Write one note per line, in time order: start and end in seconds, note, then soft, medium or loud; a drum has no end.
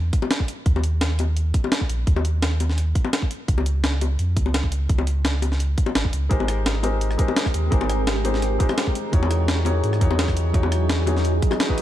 0.00 0.12 E2 medium
0.13 kick loud
0.13 closed hi-hat medium
0.22 high bongo medium
0.31 snare loud
0.31 closed hi-hat medium
0.40 kick medium
0.48 closed hi-hat medium
0.66 1.53 D#2 loud
0.66 kick loud
0.66 closed hi-hat medium
0.76 high bongo medium
0.84 closed hi-hat medium
1.01 snare loud
1.01 closed hi-hat medium
1.19 closed hi-hat medium
1.19 high bongo medium
1.37 closed hi-hat medium
1.54 kick loud
1.54 closed hi-hat medium
1.64 high bongo medium
1.72 snare loud
1.72 closed hi-hat medium
1.81 kick medium
1.89 2.05 A#1 medium
1.89 closed hi-hat medium
2.07 2.94 D#2 medium
2.07 kick loud
2.07 closed hi-hat medium
2.16 high bongo medium
2.25 closed hi-hat medium
2.42 snare loud
2.42 closed hi-hat medium
2.60 closed hi-hat medium
2.60 high bongo medium
2.70 snare soft
2.78 closed hi-hat medium
2.95 kick loud
2.95 closed hi-hat medium
3.05 high bongo medium
3.13 snare loud
3.13 closed hi-hat medium
3.22 kick medium
3.31 closed hi-hat medium
3.48 4.18 C#2 loud
3.48 kick loud
3.48 closed hi-hat medium
3.58 high bongo medium
3.66 closed hi-hat medium
3.84 snare loud
3.84 closed hi-hat medium
4.01 closed hi-hat medium
4.01 high bongo medium
4.19 4.38 F2 loud
4.19 closed hi-hat medium
4.37 4.88 C#2 medium
4.37 kick medium
4.37 closed hi-hat medium
4.46 high bongo medium
4.54 snare loud
4.54 closed hi-hat medium
4.64 kick medium
4.72 closed hi-hat medium
4.89 5.76 C#2 loud
4.89 kick loud
4.89 closed hi-hat medium
4.98 high bongo medium
5.07 closed hi-hat medium
5.25 snare loud
5.25 closed hi-hat medium
5.42 closed hi-hat medium
5.42 high bongo medium
5.52 snare soft
5.60 closed hi-hat medium
5.78 kick medium
5.78 closed hi-hat medium
5.86 high bongo medium
5.95 6.11 G#1 medium
5.95 snare loud
5.95 closed hi-hat medium
6.05 kick medium
6.13 6.29 C#2 medium
6.13 closed hi-hat medium
6.29 7.18 G#1 loud
6.29 6.81 G#3 medium
6.29 9.10 G#3 medium
6.29 9.10 C4 medium
6.29 6.81 D#4 medium
6.29 6.82 G4 medium
6.29 9.10 G4 medium
6.29 9.10 A#4 medium
6.29 6.82 A#4 medium
6.29 6.82 C5 loud
6.29 kick loud
6.29 closed hi-hat medium
6.40 high bongo medium
6.48 cross-stick soft
6.48 closed hi-hat medium
6.66 snare loud
6.66 closed hi-hat medium
6.83 7.16 G#3 medium
6.83 7.17 D#4 medium
6.83 7.17 G4 medium
6.83 7.17 A#4 medium
6.83 7.17 C5 medium
6.83 closed hi-hat medium
6.83 high bongo medium
7.01 closed hi-hat medium
7.11 cross-stick soft
7.18 7.69 G#3 medium
7.18 7.69 D#4 medium
7.18 7.70 G4 medium
7.18 7.70 A#4 medium
7.18 7.70 C5 loud
7.18 kick loud
7.18 closed hi-hat medium
7.28 high bongo medium
7.37 snare loud
7.37 closed hi-hat medium
7.46 kick medium
7.46 cross-stick soft
7.54 7.70 D#2 medium
7.54 closed hi-hat medium
7.70 8.59 G#1 medium
7.70 8.22 G#3 medium
7.70 8.22 D#4 medium
7.70 8.23 G4 medium
7.70 8.23 A#4 medium
7.70 8.23 C5 loud
7.70 kick loud
7.70 closed hi-hat medium
7.81 high bongo medium
7.89 cross-stick soft
7.89 closed hi-hat medium
8.07 snare loud
8.07 closed hi-hat medium
8.24 8.57 G#3 medium
8.24 8.58 D#4 medium
8.24 8.58 G4 medium
8.24 8.58 A#4 medium
8.24 8.58 C5 medium
8.24 closed hi-hat medium
8.24 high bongo medium
8.34 snare soft
8.42 closed hi-hat medium
8.59 9.10 G#3 medium
8.59 9.11 D#4 medium
8.59 9.11 G4 medium
8.59 9.11 A#4 medium
8.59 9.12 C5 loud
8.59 kick loud
8.59 closed hi-hat medium
8.69 cross-stick soft
8.69 high bongo medium
8.78 snare loud
8.78 closed hi-hat medium
8.87 kick medium
8.95 closed hi-hat medium
9.12 9.82 E2 loud
9.12 9.63 E3 medium
9.12 11.82 F#3 medium
9.12 11.82 C#4 medium
9.12 9.64 D#4 medium
9.12 11.82 D#4 medium
9.12 9.64 F#4 medium
9.12 11.82 G#4 medium
9.12 9.64 G#4 medium
9.12 9.65 C#5 loud
9.12 kick loud
9.12 closed hi-hat medium
9.23 high bongo loud
9.31 cross-stick soft
9.31 closed hi-hat medium
9.48 snare loud
9.48 closed hi-hat medium
9.65 9.98 E3 medium
9.65 9.99 D#4 medium
9.65 9.99 F#4 medium
9.65 9.99 G#4 medium
9.65 10.00 C#5 medium
9.65 closed hi-hat medium
9.65 high bongo medium
9.83 10.03 G#2 loud
9.83 closed hi-hat medium
9.93 cross-stick soft
10.00 10.53 E2 medium
10.00 10.51 E3 loud
10.00 10.52 D#4 medium
10.00 10.52 F#4 medium
10.00 10.52 G#4 medium
10.00 10.53 C#5 loud
10.00 kick loud
10.00 closed hi-hat medium
10.11 high bongo medium
10.19 snare loud
10.19 closed hi-hat medium
10.28 kick medium
10.28 cross-stick soft
10.37 closed hi-hat medium
10.53 11.41 E2 loud
10.53 11.04 E3 medium
10.53 11.05 D#4 medium
10.53 11.05 F#4 medium
10.53 11.05 G#4 medium
10.53 11.06 C#5 loud
10.53 kick loud
10.53 closed hi-hat medium
10.63 high bongo medium
10.72 cross-stick soft
10.72 closed hi-hat medium
10.90 snare loud
10.90 closed hi-hat medium
11.06 11.40 E3 medium
11.06 11.40 D#4 medium
11.06 11.40 F#4 medium
11.06 11.41 G#4 medium
11.06 11.41 C#5 medium
11.06 closed hi-hat medium
11.06 high bongo medium
11.16 snare soft
11.25 closed hi-hat medium
11.42 kick loud
11.42 closed hi-hat medium
11.51 cross-stick soft
11.51 high bongo loud
11.60 snare loud
11.60 closed hi-hat medium
11.69 11.82 E3 medium
11.69 11.82 D#4 medium
11.69 11.82 F#4 medium
11.69 11.82 G#4 medium
11.69 11.82 B4 loud
11.69 kick medium
11.78 closed hi-hat medium